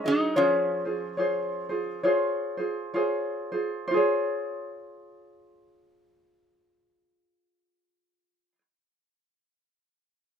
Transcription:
0.04 0.34 F#3 medium
0.04 0.36 D#4 soft
0.04 0.38 D#4 loud
0.04 0.36 G#4 medium
0.04 0.35 D#5 medium
0.36 2.00 F3 medium
0.36 2.01 C#4 loud
0.36 0.85 F4 medium
0.36 0.85 G#4 medium
0.36 0.84 C5 medium
0.36 0.85 C#5 medium
0.85 1.17 F4 soft
0.85 1.17 G#4 soft
0.85 1.17 C5 soft
1.17 1.70 F4 medium
1.17 1.69 G#4 medium
1.17 1.68 C5 medium
1.17 1.69 C#5 medium
1.69 2.03 F4 soft
1.69 2.03 G#4 medium
1.69 2.03 C5 medium
2.03 2.58 F4 medium
2.03 2.57 G#4 medium
2.03 2.56 C5 medium
2.03 2.58 C#5 medium
2.57 2.93 F4 soft
2.57 2.94 G#4 medium
2.57 2.94 C5 medium
2.94 3.52 F4 medium
2.94 3.51 G#4 medium
2.94 3.51 C5 medium
2.94 3.52 C#5 medium
3.52 3.90 F4 soft
3.52 3.90 G#4 soft
3.52 3.86 C5 medium
3.88 8.55 F4 medium
3.88 8.52 C5 medium
3.94 8.58 G#4 medium
3.94 8.61 C#5 medium

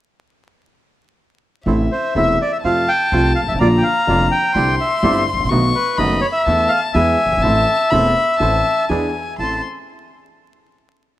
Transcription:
1.66 1.86 A1 medium
1.66 1.87 A2 medium
1.66 1.86 C3 medium
1.66 1.87 E3 medium
1.66 1.87 A3 soft
1.66 1.87 A3 medium
1.66 1.87 C4 soft
1.66 1.87 E4 medium
1.66 2.60 E5 medium
1.92 2.14 C5 medium
2.14 2.36 E1 medium
2.14 2.36 E2 medium
2.14 2.36 C3 medium
2.14 2.36 E3 medium
2.14 2.35 A3 medium
2.14 2.36 A3 medium
2.14 2.36 C4 medium
2.14 2.35 E4 medium
2.14 2.36 E4 medium
2.14 2.39 E5 medium
2.42 2.52 D5 medium
2.52 2.57 E5 medium
2.63 2.84 F2 medium
2.63 2.84 C3 medium
2.63 2.85 F3 medium
2.63 2.84 A3 medium
2.63 2.85 A3 soft
2.63 2.84 C4 medium
2.63 2.84 F4 medium
2.63 2.85 F4 medium
2.63 2.89 F5 medium
2.63 3.60 A5 medium
2.88 3.33 G5 medium
3.11 3.32 C2 medium
3.11 3.33 C2 medium
3.11 3.33 C3 medium
3.11 3.33 F3 medium
3.11 3.32 A3 medium
3.11 3.33 A3 medium
3.11 3.32 C4 soft
3.11 3.32 F4 medium
3.11 3.33 F4 medium
3.35 3.41 F5 medium
3.42 3.47 G1 soft
3.42 3.48 G1 soft
3.48 3.53 G#1 soft
3.48 3.54 G#1 medium
3.48 3.53 E5 medium
3.54 3.60 A1 medium
3.59 3.80 A#1 medium
3.59 3.80 A#2 medium
3.59 3.80 D3 medium
3.59 3.80 F3 medium
3.59 3.80 A#3 medium
3.59 3.80 D4 medium
3.59 3.80 F4 medium
3.59 3.68 D5 medium
3.59 4.54 A#5 medium
3.77 3.84 G5 medium
3.83 4.28 F5 medium
4.07 4.28 F1 medium
4.07 4.27 F2 medium
4.07 4.28 D3 medium
4.07 4.27 F3 medium
4.07 4.27 A#3 medium
4.07 4.28 A#3 medium
4.07 4.28 D4 medium
4.07 4.28 F4 medium
4.31 4.75 G5 medium
4.55 4.75 C2 medium
4.55 4.75 C3 medium
4.55 4.75 D3 medium
4.55 4.75 G3 medium
4.55 4.75 C4 medium
4.55 4.75 D4 medium
4.55 4.75 E4 medium
4.55 5.51 C6 medium
4.80 5.24 E5 medium
5.02 5.23 G1 medium
5.02 5.22 G2 medium
5.02 5.22 D3 medium
5.02 5.23 G3 medium
5.02 5.22 C4 medium
5.02 5.23 D4 medium
5.02 5.23 E4 medium
5.33 5.38 G#1 soft
5.33 5.39 G#1 soft
5.39 5.44 A1 medium
5.39 5.45 A1 medium
5.44 5.50 A#1 medium
5.49 5.70 B1 medium
5.49 5.71 B1 medium
5.49 5.71 B2 medium
5.49 5.71 D#3 medium
5.49 5.70 A3 medium
5.49 5.71 A3 soft
5.49 5.70 B3 medium
5.49 5.71 B3 medium
5.49 5.70 D#4 medium
5.49 5.71 F#4 medium
5.49 5.99 C#6 medium
5.75 5.99 B4 medium
5.97 6.18 F#1 medium
5.97 6.19 F#1 medium
5.97 6.19 F#2 medium
5.97 6.19 D#3 medium
5.97 6.18 A3 medium
5.97 6.19 A3 medium
5.97 6.18 B3 medium
5.97 6.19 B3 medium
5.97 6.18 D#4 medium
5.97 6.19 F#4 medium
5.97 6.20 D#5 medium
5.97 6.46 B5 medium
6.21 6.27 C#5 medium
6.32 6.71 E5 medium
6.46 6.67 E2 medium
6.46 6.68 E2 medium
6.46 6.67 E3 medium
6.46 6.66 A3 medium
6.46 6.68 A3 medium
6.46 6.66 B3 medium
6.46 6.67 B3 medium
6.46 6.66 E4 medium
6.46 6.68 A4 medium
6.46 6.96 A5 medium
6.68 6.80 F5 medium
6.93 7.15 E2 medium
6.93 7.15 E3 medium
6.93 7.15 G#3 medium
6.93 7.15 B3 medium
6.93 7.15 E4 medium
6.93 7.15 G#4 medium
6.93 8.85 E5 medium
6.93 7.43 G#5 medium
7.25 7.31 F#1 soft
7.31 7.37 G1 medium
7.37 7.43 G#1 medium
7.42 7.64 A1 medium
7.42 7.64 A2 medium
7.42 7.63 E3 medium
7.42 7.64 A3 medium
7.42 7.63 C4 soft
7.42 7.64 C4 medium
7.42 7.64 E4 medium
7.42 7.64 A4 medium
7.42 7.92 A5 medium
7.90 8.12 E1 medium
7.90 8.12 E2 medium
7.90 8.12 E3 medium
7.90 8.12 A3 medium
7.90 8.12 C4 medium
7.90 8.12 E4 medium
7.90 8.12 A4 medium
7.90 8.38 B5 medium
8.39 8.61 A1 medium
8.39 8.61 A2 medium
8.39 8.61 E3 medium
8.39 8.61 A3 medium
8.39 8.61 C4 soft
8.39 8.61 C4 medium
8.39 8.61 E4 medium
8.39 8.61 A4 medium
8.39 8.91 A5 medium
8.89 9.10 E2 medium
8.89 9.11 E2 medium
8.89 9.11 E3 medium
8.89 9.10 G#3 medium
8.89 9.11 B3 medium
8.89 9.10 D4 medium
8.89 9.11 D4 medium
8.89 9.11 E4 medium
8.89 9.10 G#4 medium
8.89 9.38 G#5 medium
9.38 9.59 A1 soft
9.38 9.59 A3 soft
9.38 9.59 C4 soft
9.38 9.59 E4 soft
9.38 9.60 A4 soft
9.38 9.62 A5 medium
9.38 9.61 C6 medium

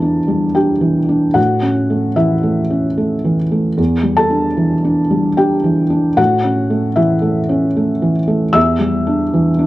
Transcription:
0.00 1.33 E2 soft
0.00 0.19 E3 soft
0.00 0.28 G3 soft
0.00 0.02 D4 soft
0.00 0.45 D4 soft
0.00 0.52 A4 soft
0.00 0.56 A5 medium
0.28 0.72 G3 soft
0.55 0.99 D4 soft
0.55 1.33 G4 soft
0.55 1.36 G5 soft
0.81 1.25 E3 soft
1.09 1.36 D4 soft
1.34 3.73 A2 soft
1.34 2.13 F#4 medium
1.34 2.17 F#5 medium
1.62 2.06 C#4 soft
1.90 2.34 A3 soft
2.16 2.60 E3 soft
2.16 3.34 E4 soft
2.16 3.38 E5 medium
2.43 2.87 A3 soft
2.70 3.14 C#4 soft
2.98 3.41 A3 soft
3.24 3.67 E3 soft
3.51 3.78 A3 soft
3.77 6.14 E2 soft
4.03 4.47 G3 soft
4.16 5.35 A4 medium
4.16 5.38 A5 medium
4.30 4.74 D4 soft
4.57 5.01 E3 soft
4.84 5.28 D4 soft
5.10 5.54 G3 soft
5.37 5.81 D4 soft
5.37 6.14 G4 soft
5.37 6.17 G5 medium
5.64 6.07 E3 soft
5.90 6.17 D4 soft
6.17 8.51 A2 soft
6.17 6.93 F#4 medium
6.17 6.97 F#5 medium
6.44 6.86 C#4 soft
6.70 7.13 A3 soft
6.96 7.39 E3 soft
6.96 8.12 E4 soft
6.96 8.15 E5 medium
7.22 7.65 A3 soft
7.49 7.92 C#4 soft
7.77 8.19 A3 soft
8.02 8.44 E3 soft
8.28 8.55 A3 soft
8.53 9.67 E2 soft
8.53 9.67 E5 medium
8.53 9.67 E6 medium
8.79 9.23 G3 soft
9.06 9.49 D4 soft
9.34 9.67 E3 soft
9.59 9.67 D4 soft

